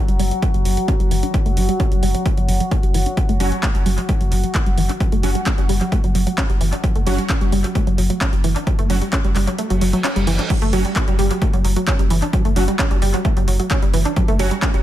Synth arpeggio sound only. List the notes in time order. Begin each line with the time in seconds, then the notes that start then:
0.08 G3
0.19 G3
0.31 F#3
0.42 A3
0.54 F#3
0.65 F#3
0.77 F#3
0.88 C#4
1.00 G3
1.11 E3
1.23 D4
1.34 F#3
1.46 A3
1.57 F#3
1.69 G3
1.80 C#4
1.92 G3
2.03 G3
2.15 F#3
2.26 A3
2.37 F#3
2.49 F#3
2.60 F#3
2.71 C#4
2.83 G3
2.94 E3
3.06 D4
3.17 F#3
3.29 A3
3.40 F#3
3.52 G3
3.63 C#4
3.75 G3
3.86 G3
3.98 F#3
4.09 A3
4.21 F#3
4.32 F#3
4.44 F#3
4.55 C#4
4.66 G3
4.78 E3
4.89 D4
5.00 F#3
5.12 A3
5.23 F#3
5.35 G3
5.46 C#4
5.58 G3
5.69 G3
5.81 F#3
5.92 A3
6.04 F#3
6.15 F#3
6.27 F#3
6.38 C#4
6.50 G3
6.61 E3
6.73 D4
6.84 F#3
6.95 A3
7.07 F#3
7.18 G3
7.29 C#4
7.41 G3
7.52 G3
7.64 F#3
7.75 A3
7.87 F#3
7.98 F#3
8.10 F#3
8.21 C#4
8.33 G3
8.44 E3
8.56 D4
8.67 F#3
8.79 A3
8.90 F#3
9.02 G3
9.13 C#4
9.24 G3
9.36 G3
9.47 F#3
9.59 A3
9.70 F#3
9.81 F#3
9.93 F#3
10.04 C#4
10.16 G3
10.27 E3
10.39 D4
10.50 F#3
10.62 A3
10.73 F#3
10.85 G3
10.96 C#4
11.08 G3
11.19 G3
11.31 F#3
11.42 A3
11.54 F#3
11.65 F#3
11.76 F#3
11.87 C#4
11.99 G3
12.10 E3
12.22 D4
12.33 F#3
12.45 A3
12.56 F#3
12.68 G3
12.79 C#4
12.91 G3
13.02 G3
13.14 F#3
13.25 A3
13.37 F#3
13.48 F#3
13.60 F#3
13.71 C#4
13.83 G3
13.94 E3
14.05 D4
14.17 F#3
14.28 A3
14.39 F#3
14.51 G3
14.62 C#4
14.74 G3